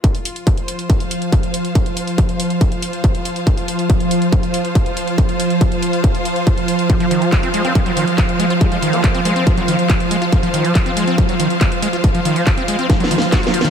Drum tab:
HH |x--x--x--x--x--x--x--x--x--x--x--x--x--x--x--x--|x--x--x--x--x--x--x--x--x--x--x--x--x--x--x--x--|x--x--x--x--x--x--x--x--x--x--x--x--x--x--x--x--|x--x--x--x--x--x--x--x--x--x--x--x--x--x--x--x--|
CP |------------------------------------------------|------------------------------------------------|------------------------------------------------|------------------------------------------------|
SD |------------------------------------------------|------------------------------------------------|------------------------------------------------|------------------------------------------------|
BD |o-----------o-----------o-----------o-----------|o-----------o-----------o-----------o-----------|o-----------o-----------o-----------o-----------|o-----------o-----------o-----------o-----------|

HH |x--x--x--x--x--x--x--x--x--x--x--x--x--x--x--x--|x--x--x--x--x--x--x--x--x--x--x--x--x--x--x--x--|x--x--x--x--x--x--x--x--x--x--x--x--x--x--x--x--|x--x--x--x--x--x--x--x--x--x--x--x--x--x--x--x--|
CP |------------x-----------------------x-----------|------------x-----------------------x-----------|------------x-----------------------x-----------|------------x-----------------------x-----------|
SD |------------------------------------------------|------------------------------------------------|------------------------------------------------|------------------------o---o---o---o---o---o---|
BD |o-----------o-----------o-----------o-----------|o-----------o-----------o-----------o-----------|o-----------o-----------o-----------o-----------|o-----------o-----------o-----------o-----------|